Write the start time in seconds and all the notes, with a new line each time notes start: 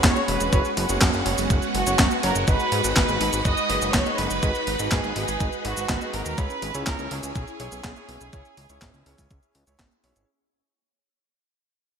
Already playing: G#3 C#4 F#4 G#4 C#5
0.04 E1 C#5 C#6, kick, snare, clap, closed hi-hat, cabasa
0.16 C#4 F#4 G#4 C#5, closed hi-hat, cabasa
0.28 E1 B4 B5, open hi-hat
0.41 E1, closed hi-hat, cabasa
0.53 F#1 B3 C#4 F#4 G#4 C#5, kick, closed hi-hat, cabasa
0.65 closed hi-hat, cabasa
0.77 F#1, open hi-hat
0.89 F#1 C#4 F#4 G#4 C#5, closed hi-hat, cabasa
1.01 F#2, kick, snare, clap, closed hi-hat, cabasa
1.14 F#1, closed hi-hat, cabasa
1.26 F#1 C#4 F#4 G#4 C#5, open hi-hat
1.38 F#1, open hi-hat, cabasa
1.50 F#1, kick, closed hi-hat, cabasa
1.62 closed hi-hat, cabasa
1.75 F#1 F#4 F#5, open hi-hat
1.87 F#1 C#4 F#4 G#4 C#5, closed hi-hat, cabasa
1.99 F#2, kick, snare, clap, closed hi-hat, cabasa
2.11 closed hi-hat, cabasa
2.23 F#1 C#4 F#4 G#4 A#4 C#5 A#5, open hi-hat
2.35 F#1, closed hi-hat, cabasa
2.48 G#1 D#4 F#4 G#4 B4 B5, kick, closed hi-hat, cabasa
2.60 closed hi-hat, cabasa
2.72 G#2, open hi-hat
2.84 G#1 D#4 F#4 G#4 B4, closed hi-hat, cabasa
2.96 G#1 B4 B5, kick, snare, clap, closed hi-hat, cabasa
3.09 G#1, closed hi-hat, cabasa
3.21 G#1 D#4 F#4 G#4 B4, open hi-hat
3.33 G#1, closed hi-hat, cabasa
3.45 F#1 D#5 D#6, kick, closed hi-hat, cabasa
3.57 closed hi-hat, cabasa
3.70 F#1 D#4 F#4 G#4 B4, open hi-hat
3.82 F#1, closed hi-hat, cabasa
3.94 F#1 C#5 C#6, kick, snare, clap, closed hi-hat, cabasa
4.06 D#4 F#4 G#4 B4, closed hi-hat, cabasa
4.18 F#1 B4 B5, open hi-hat
4.31 F#1, closed hi-hat, cabasa
4.43 G#1 D#4 F#4 G#4 B4, kick, closed hi-hat, cabasa
4.55 closed hi-hat, cabasa
4.67 G#1, open hi-hat
4.79 G#1 D#4 F#4 G#4 B4, closed hi-hat, cabasa
4.92 G#2 G#4 G#5, kick, snare, clap, closed hi-hat, cabasa
5.04 G#1, closed hi-hat, cabasa
5.16 G#1 D#4 F#4 G#4 B4 G#5, open hi-hat
5.28 G#1, open hi-hat, cabasa
5.40 G#1, kick, closed hi-hat, cabasa
5.53 closed hi-hat, cabasa
5.65 G#1 D#4 F#4 G#4 B4 F#5, open hi-hat
5.77 G#1, closed hi-hat, cabasa
5.89 G#1, kick, snare, clap, closed hi-hat, cabasa
6.01 D#4 F#4 G#4 B4, closed hi-hat, cabasa
6.13 G#1 A#4 A#5, open hi-hat
6.26 D#2, closed hi-hat, cabasa
6.38 C#2 C#4 E4 G#4 B4 C#5 B5, kick, closed hi-hat, cabasa
6.50 closed hi-hat, cabasa
6.62 G#1, open hi-hat
6.75 C#2 C#4 E4 G#4 C#5, closed hi-hat, cabasa
6.87 C#2 A#4 A#5, kick, snare, clap, closed hi-hat, cabasa
6.99 C#2, closed hi-hat, cabasa
7.11 C#2 C#4 E4 G#4 C#5 G#5, open hi-hat
7.23 C#2, closed hi-hat, cabasa
7.35 B1, kick, closed hi-hat, cabasa
7.48 closed hi-hat, cabasa
7.60 B1 C#4 E4 G#4 C#5, open hi-hat
7.72 B1, closed hi-hat, cabasa
7.84 B1, kick, snare, clap, closed hi-hat, cabasa
7.96 C#4 E4 G#4 C#5, closed hi-hat, cabasa
8.09 B1, open hi-hat
8.21 B1, closed hi-hat, cabasa
8.33 C#2 C#4 E4 G#4 C#5, kick, closed hi-hat, cabasa
8.45 closed hi-hat, cabasa
8.57 C#2, open hi-hat
8.70 C#2 C#4 E4 G#4 C#5, closed hi-hat, cabasa
8.82 G#1, kick, snare, clap, closed hi-hat, cabasa
8.94 C#2, closed hi-hat, cabasa
9.06 C#2 C#4 E4 G#4 C#5, open hi-hat
9.18 C#2, kick, open hi-hat, cabasa
9.31 C#2, kick, closed hi-hat, cabasa
9.43 closed hi-hat, cabasa
9.55 C#2, open hi-hat
9.67 C#2 C#4 E4 G#4 C#5, closed hi-hat, cabasa
9.79 G#1, kick, snare, clap, closed hi-hat, cabasa
9.92 closed hi-hat, cabasa
10.04 B1 C#4 E4 G#4 C#5, open hi-hat
10.16 G#1, closed hi-hat, cabasa